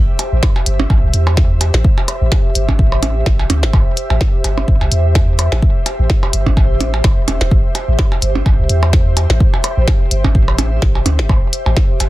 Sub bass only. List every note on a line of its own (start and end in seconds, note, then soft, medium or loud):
0.32 0.41 A1 medium
0.66 0.86 G1 medium
0.90 1.01 A1 medium
1.03 1.12 C2 loud
1.14 1.70 E2 medium
1.74 1.83 A1 loud
2.21 2.30 A1 medium
2.55 2.75 G1 medium
2.79 3.23 A1 medium
3.26 3.46 A1 medium
3.50 3.65 D2 loud
3.63 3.72 G1 loud
3.73 3.84 A1 loud
4.10 4.19 A1 medium
4.44 4.64 G1 medium
4.68 4.79 A1 medium
4.81 4.90 C2 loud
4.92 5.48 E2 loud
5.52 5.61 A1 loud
5.99 6.08 A1 medium
6.33 6.53 G1 medium
6.57 7.01 A1 medium
7.04 7.15 G1 loud
7.28 7.39 E1 medium
7.41 7.50 E1 loud
7.51 7.62 A1 loud
7.88 7.97 A1 medium
8.22 8.42 G1 medium
8.46 8.57 A1 medium
8.59 8.68 C2 loud
8.69 9.26 E2 loud
9.30 9.39 A1 loud
9.77 9.86 A1 medium
10.11 10.31 G1 medium
10.35 10.79 A1 medium
10.82 11.02 A1 medium
11.06 11.20 D2 medium
11.19 11.28 G1 loud
11.29 11.40 A1 loud
11.66 11.75 A1 medium
12.00 12.09 G1 medium